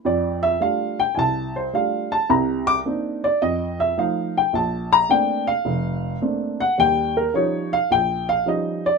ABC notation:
X:1
M:4/4
L:1/8
Q:"Swing" 1/4=107
K:F
V:1 name="Upright piano"
d e f g [^ga] c f a | b d' z d _e =e f g | a b g f3 z ^f | g B _d f g f _e =d |]
V:2 name="Upright piano"
F,,2 [G,A,DF] z C,,2 [G,A,DF] z | [C,,C,]2 [B,CD_E] z F,,2 [F,A,E] z | B,,,2 [A,B,CD] z F,,,2 [A,B,CD] z | [_E,,G,]2 [F,G,_D_E] z B,,,2 [F,G,DE] z |]